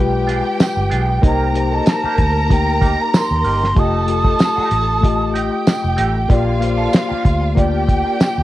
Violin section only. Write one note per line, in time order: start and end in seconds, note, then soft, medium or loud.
0.00 1.20 G4 medium
0.00 1.20 G5 loud
1.25 3.73 A#4 medium
1.25 3.73 A#5 loud
3.76 5.32 A4 medium
3.76 5.32 A5 loud
5.35 6.28 G4 medium
5.35 6.28 G5 medium
6.31 7.55 F4 medium
6.31 7.55 F5 loud
7.57 8.43 G4 medium
7.57 8.43 G5 loud